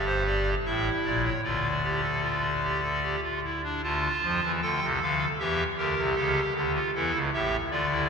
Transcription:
Already playing: G1 G2 G4
0.07 C5
0.26 D5
0.65 A1 A2 E4 E5
1.05 A#1 A#2 D5
1.24 C#5
1.44 D2 D3 F4 D5
1.83 G4
2.03 A4
2.22 F4
2.63 G4
2.83 A4
3.03 G4
3.23 F4
3.44 E4
3.63 D4
3.83 D2 D3 F4 A5
4.23 F2 F3
4.43 E2 E3
4.62 D2 D3 A4 G5
4.82 C2 C3
5.01 D2 D3 F5
5.39 E2 E3 G4 E5
5.77 D2 D3 G4 A#4
5.97 C2 C3
6.16 C#2 C#3 A4
6.55 D2 D3 G4
6.74 F4
6.95 E2 E3 E4 A4
7.13 C#2 C#3
7.33 A1 A2 G4 E5
7.71 D2 D3 F4 D5
7.90 E4

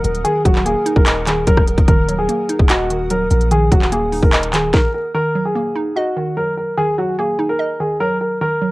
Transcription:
Already playing: D#3 F#3 D#4 A#4 D#5 F#5 D#6
0.04 D#1 A#4, closed hi-hat, open hi-hat
0.15 closed hi-hat
0.24 D#3 G#4, closed hi-hat
0.45 D#1 F#3 F#4, kick, closed hi-hat
0.55 clap
0.65 A#3 G#4, closed hi-hat
0.86 D#4, closed hi-hat
0.96 D#1 A#4, kick
1.06 D#5, clap, closed hi-hat
1.27 D#3 G#4, clap, closed hi-hat
1.47 D#1 F#3 A#4, kick, closed hi-hat
1.57 D#1, kick, cross-stick
1.68 closed hi-hat
1.78 D#1, kick, closed hi-hat
1.88 D#1 D#3 A#4 F#5 D#6, kick, closed hi-hat
2.08 F#3, closed hi-hat
2.19 G#4
2.29 A#3, closed hi-hat
2.49 D#4, closed hi-hat
2.59 D#1, kick
2.69 F#4 D#5, clap, closed hi-hat
2.90 D#3, closed hi-hat
3.10 F#3 A#4, closed hi-hat
3.30 A#1 A#4, closed hi-hat, open hi-hat
3.41 closed hi-hat
3.51 D#3 G#4, closed hi-hat
3.71 D#1 F#3 F#4, kick, closed hi-hat
3.82 clap
3.92 A#3 G#4, closed hi-hat
4.12 D#4, open hi-hat
4.23 D#1 A#4, kick
4.33 D#5, clap, closed hi-hat
4.43 closed hi-hat
4.53 D#3 G#4, clap, closed hi-hat
4.74 A#4, kick, snare
4.94 A#4
5.14 D#3 A#4
5.35 F#3
5.45 G#4
5.55 A#3
5.76 D#4
5.96 F#4 D#5
6.17 D#3
6.37 F#3 A#4
6.57 A#4
6.77 D#3 G#4
6.98 F#3 F#4
7.19 A#3 G#4
7.39 D#4
7.49 A#4
7.59 D#5
7.80 D#3 G#4
8.00 F#3 A#4
8.21 A#4
8.41 D#3 A#4
8.62 F#3

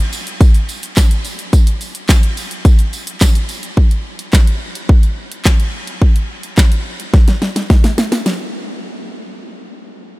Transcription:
0.13 open hi-hat, tambourine, shaker
0.27 closed hi-hat, shaker
0.41 kick, tambourine, shaker
0.54 closed hi-hat, shaker
0.69 open hi-hat, tambourine, shaker
0.83 closed hi-hat, shaker
0.96 kick, snare, clap, tambourine, shaker
1.11 closed hi-hat, shaker
1.25 open hi-hat, tambourine, shaker
1.39 closed hi-hat, shaker
1.53 kick, tambourine, shaker
1.67 closed hi-hat, shaker
1.81 open hi-hat, tambourine, shaker
1.95 closed hi-hat, shaker
2.09 kick, snare, clap, tambourine, shaker
2.23 closed hi-hat, shaker
2.37 open hi-hat, tambourine, shaker
2.51 closed hi-hat, shaker
2.65 kick, tambourine, shaker
2.79 closed hi-hat, shaker
2.93 open hi-hat, tambourine, shaker
3.07 closed hi-hat, shaker
3.21 kick, snare, clap, tambourine, shaker
3.35 closed hi-hat, shaker
3.49 open hi-hat, tambourine, shaker
3.63 closed hi-hat, shaker
3.77 kick
3.91 closed hi-hat
4.19 closed hi-hat
4.33 kick, snare, clap
4.47 closed hi-hat
4.75 closed hi-hat
4.89 kick
5.03 closed hi-hat
5.32 closed hi-hat
5.45 kick, snare, clap
5.60 closed hi-hat
5.87 closed hi-hat
6.02 kick
6.16 closed hi-hat
6.43 closed hi-hat
6.58 kick, snare, clap
6.72 closed hi-hat
7.00 closed hi-hat
7.14 kick, snare
7.28 snare, closed hi-hat
7.42 snare
7.56 snare, closed hi-hat
7.70 kick, snare
7.84 snare, closed hi-hat
7.98 snare
8.12 snare, closed hi-hat
8.26 snare, open hi-hat

